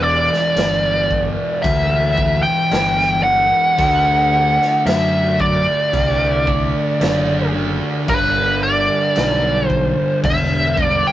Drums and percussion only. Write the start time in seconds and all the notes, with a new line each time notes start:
0.33 snare
0.56 snare, crash
1.11 kick
1.64 kick, crash
2.18 kick
2.71 snare, crash
3.01 snare
3.79 kick, crash
4.62 snare
4.86 snare, crash
5.40 kick
5.93 kick, crash
6.47 kick
7.01 snare, crash
8.08 kick, crash
9.16 snare, crash
9.70 kick
10.24 kick, crash
10.77 kick